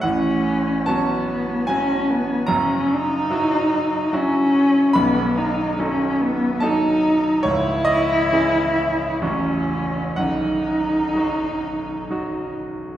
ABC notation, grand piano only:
X:1
M:3/4
L:1/8
Q:1/4=72
K:F#dor
V:1 name="Grand piano"
f2 a2 g2 | ^a6 | b4 a z | c d2 e3 |
f4- f z |]
V:2 name="Grand piano" clef=bass
[A,,,A,,]2 [F,CF]2 [F,CF]2 | [F,,,F,,]2 [F,EF]2 [F,EF]2 | [B,,,,B,,,]2 [F,DA]2 [F,DA]2 | [C,,,C,,]2 [E,CG]2 [A,,,,A,,,F,CF]2 |
[B,,,,B,,,]2 [F,DF]2 [F,DF]2 |]